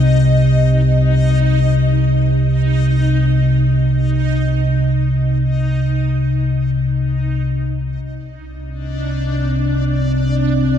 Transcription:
0.00 7.99 C2 medium
0.00 7.99 C3 medium
0.00 8.03 D#4 medium
0.00 8.04 D#5 medium
7.99 10.78 C2 medium
7.99 10.78 C3 medium
7.99 10.78 C4 medium
7.99 10.78 D4 medium
7.99 10.78 D5 medium

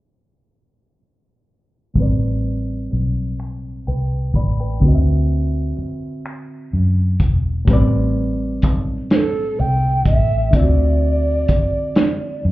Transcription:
1.94 2.87 A1 medium
1.94 4.76 A2 medium
1.94 4.77 G3 soft
1.94 kick medium
1.94 closed hi-hat soft
1.98 4.79 C4 soft
1.98 3.85 B4 medium
1.98 3.85 D5 medium
2.90 3.83 B1 medium
2.90 closed hi-hat medium
3.39 finger snap medium
3.39 closed hi-hat soft
3.87 4.31 C2 medium
3.87 4.32 B4 soft
3.87 4.32 G5 medium
4.34 4.78 A1 medium
4.34 4.58 D5 medium
4.34 4.57 B5 medium
4.34 kick medium
4.34 closed hi-hat medium
4.60 5.04 B4 soft
4.60 5.04 G5 soft
4.80 5.73 D2 medium
4.80 7.62 D3 medium
4.80 7.63 C4 medium
4.80 kick medium
4.80 closed hi-hat medium
4.86 7.65 F#4 medium
4.86 4.91 D#5 medium
4.95 7.70 E5 medium
5.77 muted fingered electric bass stroke soft
5.77 closed hi-hat medium
6.25 finger snap medium
6.25 closed hi-hat soft
6.73 7.16 F#2 medium
7.20 7.64 E1 medium
7.20 kick medium
7.20 closed hi-hat medium
7.65 8.64 A1 loud
7.65 10.48 A2 medium
7.65 10.49 G3 medium
7.65 kick loud
7.65 closed hi-hat medium
7.70 10.50 C4 medium
7.70 10.51 B4 medium
7.70 10.52 D5 medium
8.62 9.54 B1 loud
8.62 kick medium
8.62 closed hi-hat medium
9.10 9.17 C5 loud
9.10 snare loud
9.10 closed hi-hat medium
9.16 9.61 A4 loud
9.60 10.02 C2 medium
9.60 10.06 G5 medium
10.05 10.49 A1 medium
10.05 10.57 E5 medium
10.05 kick medium
10.05 closed hi-hat medium
10.51 11.45 D2 medium
10.51 12.52 D3 medium
10.51 12.52 C4 medium
10.51 kick loud
10.51 closed hi-hat medium
10.55 10.61 F4 soft
10.55 12.44 D5 medium
10.59 12.52 F#4 medium
10.59 12.52 E5 medium
11.48 muted fingered electric bass stroke soft
11.48 kick medium
11.48 closed hi-hat medium
11.95 snare loud
11.95 closed hi-hat medium
12.45 12.52 F#2 medium

